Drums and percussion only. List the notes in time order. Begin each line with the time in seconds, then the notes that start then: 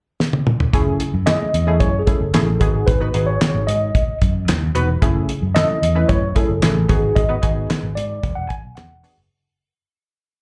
0.20 snare
0.33 high tom
0.47 mid tom
0.60 floor tom
0.73 kick, closed hi-hat
1.00 closed hi-hat
1.27 snare, clap, closed hi-hat
1.54 closed hi-hat
1.80 kick, closed hi-hat
2.07 kick, closed hi-hat
2.34 snare, clap, closed hi-hat
2.61 kick, closed hi-hat
2.88 kick, closed hi-hat
3.14 closed hi-hat
3.41 snare, clap, closed hi-hat
3.68 closed hi-hat
3.95 kick, closed hi-hat
4.22 kick, closed hi-hat
4.48 snare, clap, closed hi-hat
4.75 closed hi-hat
5.02 kick, closed hi-hat
5.29 closed hi-hat
5.56 snare, clap, closed hi-hat
5.83 closed hi-hat
6.09 kick, closed hi-hat
6.36 kick, closed hi-hat
6.62 snare, clap, closed hi-hat
6.89 kick, closed hi-hat
7.16 kick, closed hi-hat
7.43 kick, closed hi-hat
7.70 snare, clap, closed hi-hat
7.97 closed hi-hat
8.23 kick, closed hi-hat
8.50 kick, closed hi-hat
8.77 snare, clap, closed hi-hat
9.04 open hi-hat